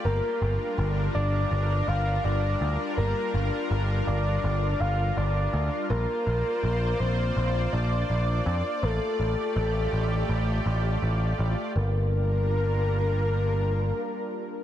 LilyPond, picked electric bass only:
\new Staff \with { instrumentName = "Picked electric bass" } { \clef bass \time 4/4 \key g \minor \tempo 4 = 82 g,,8 g,,8 g,,8 g,,8 g,,8 g,,8 g,,8 d,8 | g,,8 g,,8 g,,8 g,,8 g,,8 g,,8 g,,8 d,8 | bes,,8 bes,,8 bes,,8 bes,,8 bes,,8 bes,,8 bes,,8 f,8 | a,,8 a,,8 a,,8 a,,8 a,,8 a,,8 a,,8 a,,8 |
g,,2. r4 | }